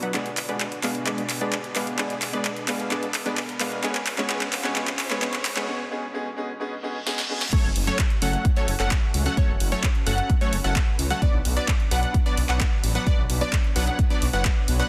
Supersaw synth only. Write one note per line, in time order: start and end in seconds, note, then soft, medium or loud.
0.03 0.13 F#3 medium
0.03 0.13 B3 medium
0.03 0.13 D4 medium
0.03 0.13 B4 medium
0.03 0.13 F#5 loud
0.14 0.29 G#3 medium
0.14 0.29 B3 medium
0.14 0.29 D4 medium
0.14 0.29 B4 medium
0.14 0.29 D5 medium
0.49 0.64 G#3 medium
0.49 0.64 B3 medium
0.49 0.64 D4 medium
0.49 0.64 B4 medium
0.49 0.64 D5 loud
0.83 1.05 G#3 medium
0.83 1.05 B3 medium
0.83 1.05 D4 medium
0.83 1.05 B4 medium
0.83 1.05 F5 medium
1.07 1.22 G#3 medium
1.07 1.22 B3 medium
1.07 1.22 D4 medium
1.07 1.22 B4 medium
1.07 1.22 D5 medium
1.41 1.56 G#3 medium
1.41 1.56 B3 medium
1.41 1.56 D4 medium
1.41 1.56 B4 medium
1.41 1.56 D5 loud
1.76 1.97 G#3 medium
1.76 1.97 B3 medium
1.76 1.97 D4 medium
1.76 1.97 B4 medium
1.76 1.97 F5 medium
1.99 2.14 G#3 medium
1.99 2.14 B3 medium
1.99 2.14 D4 medium
1.99 2.14 B4 medium
1.99 2.14 D5 medium
2.33 2.48 G#3 medium
2.33 2.48 B3 medium
2.33 2.49 D4 medium
2.33 2.48 B4 medium
2.33 2.48 D5 loud
2.68 2.89 G#3 medium
2.68 2.89 B3 medium
2.68 2.89 D4 medium
2.68 2.89 B4 medium
2.68 2.89 F5 medium
2.91 3.06 G#3 medium
2.91 3.06 B3 medium
2.91 3.06 D4 medium
2.91 3.06 B4 medium
2.91 3.06 D5 medium
3.26 3.41 G#3 loud
3.26 3.41 B3 medium
3.26 3.41 D4 medium
3.26 3.41 B4 medium
3.26 3.41 D5 loud
3.60 3.82 G#3 medium
3.60 3.82 B3 medium
3.60 3.82 D4 medium
3.60 3.82 B4 medium
3.60 3.82 F5 medium
3.84 3.99 G#3 medium
3.84 3.99 B3 medium
3.84 3.99 C#4 medium
3.84 3.99 B4 medium
3.84 3.99 C#5 medium
4.18 4.28 G#3 loud
4.18 4.28 B3 medium
4.18 4.28 C#4 medium
4.18 4.28 B4 medium
4.18 4.28 C#5 loud
4.30 4.45 G#3 medium
4.30 4.45 B3 medium
4.30 4.45 C#4 medium
4.30 4.45 B4 medium
4.30 4.45 C#5 loud
4.64 4.74 G#3 medium
4.64 4.74 B3 medium
4.64 4.74 C#4 medium
4.64 4.74 B4 medium
4.64 4.74 C#5 loud
4.76 4.91 G#3 medium
4.76 4.91 B3 medium
4.76 4.91 C#4 medium
4.76 4.91 B4 medium
4.76 4.91 C#5 loud
5.10 5.20 G#3 loud
5.10 5.20 B3 medium
5.10 5.20 C#4 medium
5.10 5.20 B4 medium
5.10 5.20 C#5 loud
5.22 5.37 G#3 medium
5.22 5.37 B3 medium
5.22 5.37 C#4 medium
5.22 5.37 B4 medium
5.22 5.37 C#5 loud
5.57 5.66 G#3 loud
5.57 5.66 B3 medium
5.57 5.66 C#4 medium
5.57 5.66 B4 medium
5.57 5.66 C#5 loud
7.53 7.68 F#3 medium
7.53 7.68 A3 medium
7.53 7.68 C#4 medium
7.53 7.68 A4 medium
7.53 7.68 C#5 medium
7.87 8.02 F#3 loud
7.87 8.02 A3 medium
7.87 8.02 C#4 medium
7.87 8.02 A4 medium
7.87 8.02 C#5 loud
8.22 8.46 F#3 medium
8.22 8.46 A3 medium
8.22 8.46 C#4 medium
8.22 8.46 A4 medium
8.22 8.46 F#5 medium
8.57 8.72 F#3 medium
8.57 8.72 A3 medium
8.57 8.72 C#4 medium
8.57 8.72 A4 medium
8.57 8.72 C#5 medium
8.80 8.95 F#3 medium
8.80 8.95 A3 medium
8.80 8.95 C#4 medium
8.80 8.95 A4 medium
8.80 8.95 F#5 medium
9.26 9.36 F#3 medium
9.26 9.36 A3 medium
9.26 9.36 C#4 medium
9.26 9.36 A4 medium
9.26 9.36 F#5 loud
9.37 9.52 F#3 medium
9.37 9.52 A3 medium
9.37 9.52 C#4 medium
9.37 9.52 A4 medium
9.37 9.52 C#5 medium
9.72 9.87 F#3 loud
9.72 9.87 A3 medium
9.72 9.87 C#4 medium
9.72 9.87 A4 medium
9.72 9.87 C#5 loud
10.07 10.31 F#3 medium
10.07 10.31 A3 medium
10.07 10.31 C#4 medium
10.07 10.31 A4 medium
10.07 10.31 F#5 medium
10.41 10.56 F#3 medium
10.41 10.56 A3 medium
10.41 10.56 C#4 medium
10.41 10.56 A4 medium
10.41 10.56 C#5 medium
10.64 10.79 F#3 medium
10.64 10.79 A3 medium
10.64 10.79 C#4 medium
10.64 10.79 A4 medium
10.64 10.79 F#5 medium
11.10 11.20 F#3 medium
11.10 11.20 A3 medium
11.10 11.20 C#4 medium
11.10 11.20 A4 medium
11.10 11.20 F#5 loud
11.22 11.37 F#3 medium
11.22 11.37 B3 medium
11.22 11.37 D4 medium
11.22 11.37 B4 medium
11.22 11.37 D5 medium
11.57 11.72 F#3 loud
11.57 11.72 B3 medium
11.57 11.72 D4 medium
11.57 11.72 B4 medium
11.57 11.72 D5 loud
11.91 12.15 F#3 medium
11.91 12.15 B3 medium
11.91 12.15 D4 medium
11.91 12.15 B4 medium
11.91 12.15 F#5 medium
12.26 12.41 F#3 medium
12.26 12.41 B3 medium
12.26 12.41 D4 medium
12.26 12.41 B4 medium
12.26 12.41 D5 medium
12.49 12.64 F#3 medium
12.49 12.64 B3 medium
12.49 12.64 D4 medium
12.49 12.64 B4 medium
12.49 12.64 F#5 medium
12.95 13.05 F#3 medium
12.95 13.05 B3 medium
12.95 13.05 D4 medium
12.95 13.05 B4 medium
12.95 13.05 F#5 loud
13.07 13.22 F#3 medium
13.07 13.22 B3 medium
13.07 13.22 D4 medium
13.07 13.22 B4 medium
13.07 13.22 D5 medium
13.41 13.56 F#3 loud
13.41 13.56 B3 medium
13.41 13.56 D4 medium
13.41 13.56 B4 medium
13.41 13.56 D5 loud
13.76 14.00 F#3 medium
13.76 14.00 B3 medium
13.76 14.00 D4 medium
13.76 14.00 B4 medium
13.76 14.00 F#5 medium
14.10 14.25 F#3 medium
14.10 14.25 B3 medium
14.10 14.25 D4 medium
14.10 14.25 B4 medium
14.10 14.25 D5 medium
14.33 14.48 F#3 medium
14.33 14.48 B3 medium
14.33 14.48 D4 medium
14.33 14.48 B4 medium
14.33 14.48 F#5 medium
14.80 14.89 F#3 medium
14.80 14.89 B3 medium
14.80 14.89 D4 medium
14.80 14.89 B4 medium
14.80 14.89 F#5 loud